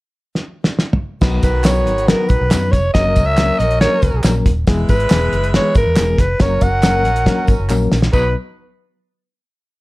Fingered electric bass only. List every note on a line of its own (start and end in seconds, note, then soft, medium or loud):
1.22 1.38 B1 medium
1.43 1.87 B1 medium
1.87 2.12 G#1 medium
2.30 2.38 A#1 medium
2.41 2.53 B1 medium
2.52 2.75 F#2 medium
2.73 2.90 F1 medium
2.95 3.18 F#1 medium
3.17 3.50 C#2 medium
3.60 3.85 A#1 medium
4.03 4.11 C#2 medium
4.14 4.22 B1 medium
4.24 4.41 A#1 medium
4.46 4.63 D#1 medium
4.68 4.84 E1 medium
4.89 5.06 G#1 medium
5.11 5.28 E1 medium
5.33 5.58 F#1 medium
5.76 5.84 G#1 medium
5.86 5.95 E2 medium
5.98 6.14 E1 medium
6.18 6.35 F1 medium
6.40 6.57 F#1 medium
6.62 7.06 F#1 medium
7.06 7.31 A#1 medium
7.48 7.57 G#1 medium
7.59 7.68 F#1 medium
7.70 7.87 A#1 medium
7.92 8.09 A#1 medium
8.14 8.34 B1 medium